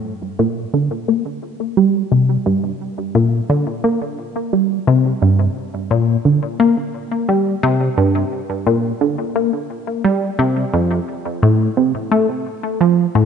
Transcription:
0.39 A#2
0.74 D3
1.08 A#3
1.77 G3
2.12 C3
2.46 G2
3.15 A#2
3.50 D3
3.84 A#3
4.53 G3
4.87 C3
5.22 G2
5.91 A#2
6.25 D3
6.60 A#3
7.29 G3
7.63 C3
7.98 G2
8.67 A#2
9.01 D3
9.36 A#3
10.05 G3
10.39 C3
10.74 F2
11.43 A2
11.77 C3
12.12 A3
12.81 F3
13.15 A2

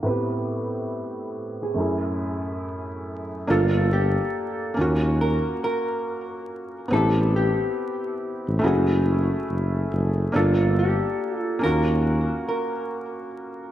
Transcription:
0.02 A2 B3 C4 B4
0.08 E4 G4
1.63 G#4
1.74 F#2 A3 C#4
1.80 E4 G#4
3.47 G1 A#3 D4 F4 A4
3.93 G4
4.74 D#2 A#3 C#4
4.79 F4 F#4
5.21 A#4
5.64 A#4
6.88 A1 B3 C4
6.93 E4 G4 A4
7.36 G4
8.48 A1
8.59 A3 C#4
8.64 F#1 E4 F#4 G#4
9.50 F#1
9.92 F#1
10.32 G1 A#3 D4 F4 A4
10.37 F4
10.79 G4
11.37 F4
11.59 A#3 C#4
11.63 D#2 F4 F#4 A#4
12.49 A#4

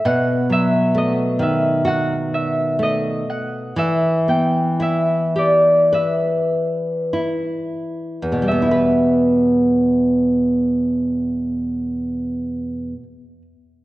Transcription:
Already playing: D5 E5
0.05 B2 F#5
0.50 F#3 E5
0.95 A3 D#5
1.39 D#3 E5
1.85 F#4 F#5
2.34 E5
2.79 A3 D#5
3.29 F#5
3.76 E3 E5
4.28 B3 G5
4.80 E4 E5
5.36 G4 D5
5.93 B4 E5
7.13 E4
8.23 E2
8.32 B2
8.42 G3
8.48 B3 E5
8.62 E4
8.71 B4

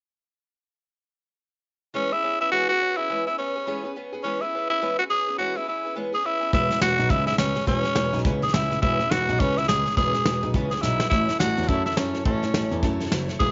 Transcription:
1.94 E3 G#3 B3 C#4 G#4 B4
2.11 B3 C#4 E4 G#4 B4
2.23 B3 C#4 G#4 B4
2.40 B3 C#4 E4 G#4 B4
2.52 E3 G#3 B3 C#4 F#4 G#4 B4
2.69 B3 C#4 F#4 G#4 B4
2.81 B3 C#4 G#4 B4
2.97 B3 C#4 E4 G#4 B4
3.10 E3 G#3 B3 C#4 G#4 B4
3.27 B3 C#4 E4 G#4 B4
3.38 B3 C#4 G#4 B4
3.56 B3 C#4 G#4 B4
3.67 E3 G#3 B3 C#4 G#4 B4
3.84 B3 C#4 G#4 B4
3.96 B3 C#4 G#4 B4
4.12 B3 C#4 G#4 B4
4.23 E3 G#3 B3 C#4 G#4 B4
4.41 C#4 E4 G#4 B4
4.54 B3 C#4 G#4 B4
4.70 B3 C#4 E4 G#4 B4
4.81 E3 G#3 B3 C#4 G#4 B4
4.98 B3 C#4 F#4 G#4 B4
5.10 B3 C#4 G#4 B4
5.28 B3 C#4 G#4 B4
5.38 E3 G#3 B3 C#4 F#4 G#4 B4
5.55 B3 C#4 E4 G#4 B4
5.66 B3 C#4 E4 G#4 B4
5.84 B3 C#4 G#4 B4
5.96 E3 G#3 B3 C#4 G#4 B4
6.12 B3 C#4 G#4 B4
6.23 B3 C#4 E4 G#4 B4
6.40 B3 C#4 G#4 B4
6.52 E1 C#3 E3 B3 C#4 E4 G#4 B4, kick, snare
6.70 E1 B3 C#4 G#4 B4, snare
6.81 E1 B3 C#4 F#4 G#4 B4, snare, hi-hat pedal
6.98 B1 B3 C#4 G#4 B4, snare
7.10 C#2 C#3 E3 B3 C#4 E4 G#4 B4, kick, snare
7.26 C#2 B3 C#4 E4 G#4 B4, snare
7.33 snare
7.38 C#2 B3 C#4 G#4 B4, snare, hi-hat pedal
7.55 C#2 B3 C#4 G#4 B4, snare
7.61 snare
7.66 E1 C#3 E3 B3 C#4 G#4 B4, kick, snare
7.84 E1 B3 G#4 B4, snare
7.96 E1 B3 C#4 G#4 B4, snare, hi-hat pedal
8.13 B1 B3 C#4 G#4 B4, snare
8.19 snare
8.25 C#2 C#3 E3 B3 C#4 G#4 B4, kick, snare
8.42 C#2 B3 C#4 G#4 B4, snare
8.48 snare
8.53 C#2 B3 C#4 E4 G#4 B4, snare, hi-hat pedal
8.70 C#2 B3 C#4 G#4 B4, snare
8.81 E1 C#3 E3 B3 C#4 E4 G#4 B4, kick, snare
8.99 E1 C#4 G#4 B4, snare
9.10 E1 B3 C#4 F#4 G#4 B4, snare, hi-hat pedal
9.28 B1 B3 C#4 G#4 B4, snare
9.40 C#2 C#3 E3 B3 C#4 G#4 B4, kick, snare
9.57 C#2 B3 C#4 E4 G#4 B4, snare
9.64 C#4, snare
9.68 C#2 B3 G#4 B4, snare, hi-hat pedal
9.84 C#2 B3 C#4 G#4 B4, snare
9.91 snare
9.97 E1 C#3 E3 B3 C#4 G#4 B4, kick, snare
10.14 E1 B3 C#4 G#4 B4, snare
10.25 E1 B3 C#4 G#4 B4, snare, hi-hat pedal
10.42 B1 B3 C#4 G#4 B4, snare
10.54 C#2 C#3 E3 B3 C#4 G#4 B4, kick, snare
10.71 C#2 C#4 G#4 B4, snare
10.77 snare
10.82 B1 B3 C#4 E4 G#4 B4, snare, hi-hat pedal
11.00 B1 B3 C#4 G#4 B4, snare
11.10 A1 F#3 A3 E4 A4 C#5, kick, snare
11.28 A1 E4 A4 C#5, snare
11.39 A1 F#3 E4 F#4 A4 C#5, snare, hi-hat pedal
11.57 E2 E4 A4 C#5, snare
11.63 snare
11.68 F#2 F#3 A3 E4 A4 C#5, kick, snare
11.85 F#2 E4 A4 C#5, snare
11.91 snare
11.97 F#2 F#3 C#4 E4 A4 C#5, snare, hi-hat pedal
12.14 F#2 E4 A4 C#5, snare
12.25 A1 F#3 A3 C#4 E4 A4 C#5, kick, snare
12.43 A1 E4 A4 C#5, snare
12.54 A1 F#3 E4 A4 C#5, snare, hi-hat pedal
12.71 E2 E4 A4 C#5, snare
12.83 F#2 F#3 A3 E4 A4 C#5, kick, snare
12.99 F#2 E4 A4 C#5, snare
13.06 snare
13.11 F#1 F#3 E4 A4 C#5, snare, hi-hat pedal
13.28 F#1 E4 A4 C#5, snare
13.39 E1 C#3 E3 B3 E4 G#4 B4, kick, snare

